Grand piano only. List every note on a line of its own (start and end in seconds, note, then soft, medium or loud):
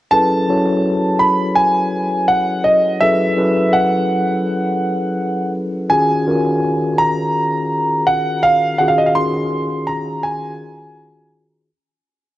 0.11 1.23 A5 loud
1.19 1.57 B5 loud
1.56 2.24 G#5 loud
2.28 2.62 F#5 loud
2.64 3.02 D#5 medium
3.00 3.75 E5 loud
3.73 5.50 F#5 medium
5.90 7.02 G#5 loud
6.98 8.03 A#5 loud
8.07 8.44 F#5 medium
8.43 8.80 F5 loud
8.78 8.88 F#5 medium
8.88 8.98 F5 medium
8.98 9.07 D#5 medium
9.06 9.15 F5 medium
9.15 9.90 C6 loud
9.87 10.25 A#5 loud
10.23 11.28 G#5 medium